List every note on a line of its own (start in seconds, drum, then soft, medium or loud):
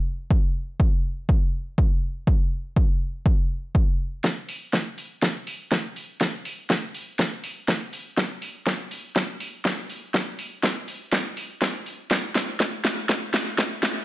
0.31 kick loud
0.80 kick loud
1.29 kick loud
1.78 kick medium
2.27 kick loud
2.76 kick loud
3.26 kick loud
3.75 kick medium
4.24 kick loud
4.24 snare soft
4.49 open hi-hat loud
4.73 kick loud
4.73 snare soft
4.98 open hi-hat medium
5.22 kick loud
5.22 snare medium
5.47 open hi-hat loud
5.72 kick loud
5.72 snare medium
5.96 open hi-hat medium
6.21 kick loud
6.21 snare medium
6.45 open hi-hat loud
6.70 kick loud
6.70 snare medium
6.95 open hi-hat loud
7.19 kick loud
7.19 snare medium
7.44 open hi-hat loud
7.68 kick loud
7.68 snare medium
7.93 open hi-hat medium
8.17 kick loud
8.17 snare medium
8.42 open hi-hat loud
8.67 kick loud
8.67 snare medium
8.91 open hi-hat loud
9.16 kick loud
9.16 snare medium
9.40 open hi-hat loud
9.65 kick loud
9.65 snare medium
9.90 open hi-hat medium
10.14 kick loud
10.14 snare medium
10.39 open hi-hat loud
10.63 kick loud
10.63 snare medium
10.88 open hi-hat medium
11.12 kick loud
11.12 snare medium
11.37 open hi-hat loud
11.62 kick loud
11.62 snare medium
11.86 open hi-hat medium
12.11 kick loud
12.11 snare medium
12.35 snare medium
12.35 open hi-hat loud
12.60 kick loud
12.60 snare medium
12.85 snare medium
12.85 open hi-hat medium
13.09 kick loud
13.09 snare medium
13.34 snare medium
13.34 open hi-hat loud
13.58 kick loud
13.58 snare medium
13.83 snare medium
13.83 open hi-hat medium